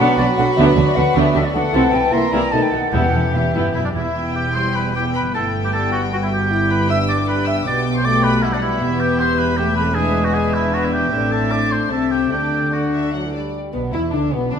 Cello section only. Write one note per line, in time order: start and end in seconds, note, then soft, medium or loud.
0.18 0.26 B2 medium
0.37 0.45 B2 medium
0.57 0.65 D3 medium
0.77 0.84 D3 medium
0.96 1.04 D3 medium
1.15 1.23 D3 medium
1.35 1.42 D3 medium
1.54 1.62 D3 medium
1.73 1.81 C3 medium
1.92 2.00 C3 medium
2.12 2.20 C3 medium
2.33 2.41 C3 medium
2.52 2.60 B2 soft
2.73 2.81 B2 soft
2.93 3.01 E2 medium
3.13 3.21 E2 soft
3.34 3.53 E2 medium
3.54 3.74 G2 medium
3.75 3.94 F#2 medium
3.95 4.13 E2 soft
4.15 5.30 E2 soft
5.34 7.66 G2 medium
7.67 8.81 B2 medium
8.81 11.13 E2 medium
11.12 11.86 A2 soft
11.91 12.31 C3 soft
12.31 13.34 D3 soft
13.75 13.92 B2 medium
13.94 14.13 E3 medium
14.13 14.33 D3 soft
14.32 14.52 B2 medium
14.52 14.59 D3 medium